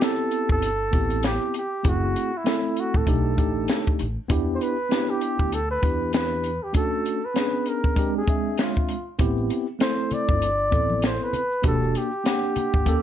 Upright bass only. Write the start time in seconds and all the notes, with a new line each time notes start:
0.50 G1
0.93 A1
1.85 F#1
2.94 A1
3.07 B1
3.38 A1
4.00 A1
4.30 E2
5.40 D2
5.83 E2
9.19 A1
10.29 G1
10.73 A1
11.64 E1
12.74 G1
12.86 D#2